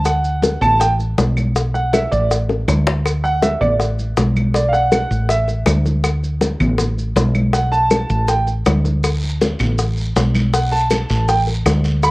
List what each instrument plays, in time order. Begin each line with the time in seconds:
Already playing: fretless electric bass D2
0.05 grand piano F#5, high bongo, high conga, claves, maracas
0.24 high conga, maracas
0.42 high bongo, high conga, maracas
0.61 fretless electric bass A1, grand piano A5, high conga, low conga, claves, maracas
0.80 grand piano G5, high bongo, high conga, maracas
0.99 high conga, maracas
1.18 fretless electric bass B1, high bongo, low bongo, high conga, maracas
1.37 high conga, claves, maracas
1.56 high bongo, high conga, maracas
1.74 grand piano F#5, high bongo, high conga, maracas
1.93 grand piano E5, high bongo, high conga, claves, maracas
2.11 fretless electric bass A1, grand piano D5, high conga, maracas
2.31 high bongo, high conga, maracas
2.49 high bongo, high conga, maracas
2.68 fretless electric bass D2, low bongo, high conga, claves, maracas
2.87 low bongo, maracas
3.05 high bongo, high conga, claves, maracas
3.24 grand piano F#5, high conga, maracas
3.42 grand piano E5, high bongo, high conga, maracas
3.61 fretless electric bass A1, grand piano D5, high conga, low conga, claves, maracas
3.80 high bongo, high conga, maracas
3.99 high conga, maracas
4.17 fretless electric bass B1, high bongo, low bongo, high conga, maracas
4.36 high conga, claves, maracas
4.54 grand piano D5, high bongo, high conga, maracas
4.68 grand piano F5
4.73 grand piano F#5, high bongo, high conga, maracas
4.92 high bongo, high conga, claves, maracas
5.10 fretless electric bass A1, high conga, maracas
5.29 grand piano E5, high bongo, high conga, maracas
5.48 high bongo, high conga, maracas
5.66 fretless electric bass D2, high bongo, low bongo, high conga, claves, maracas
5.85 high bongo, high conga, maracas
6.04 high bongo, high conga, claves, maracas
6.23 high conga, maracas
6.41 high bongo, high conga, maracas
6.60 fretless electric bass A1, high conga, low conga, claves, maracas
6.78 high bongo, high conga, low conga, maracas
6.98 high conga, maracas
7.16 fretless electric bass B1, high bongo, low bongo, high conga, maracas
7.35 high conga, claves, maracas
7.53 grand piano F#5, high bongo, high conga, maracas
7.72 grand piano A5, high bongo, high conga, maracas
7.91 high bongo, high conga, claves, maracas
8.10 fretless electric bass A1, high conga, maracas
8.28 grand piano G5, high bongo, high conga, maracas
8.47 high bongo, high conga, maracas
8.66 fretless electric bass D2, high bongo, low bongo, high conga, claves, maracas
8.85 high bongo, high conga, maracas
9.03 high bongo, high conga, long guiro, claves, maracas
9.23 high conga, maracas
9.41 high bongo, high conga, short guiro, maracas
9.59 fretless electric bass A1, high conga, low conga, short guiro, claves, maracas
9.78 high bongo, high conga, long guiro, maracas
9.97 high conga, maracas
10.16 fretless electric bass B1, high bongo, low bongo, high conga, short guiro, maracas
10.34 high conga, short guiro, claves, maracas
10.53 grand piano F#5, high bongo, high conga, long guiro, maracas
10.72 grand piano A5, high bongo, high conga, maracas
10.90 high bongo, high conga, short guiro, claves, maracas
11.09 fretless electric bass A1, high conga, short guiro, maracas
11.28 grand piano G5, high bongo, high conga, long guiro, maracas
11.47 high bongo, high conga, maracas
11.66 fretless electric bass D2, high bongo, low bongo, high conga, short guiro, claves, maracas
11.84 high bongo, short guiro, maracas
12.03 grand piano B5, high bongo, high conga, long guiro, claves, maracas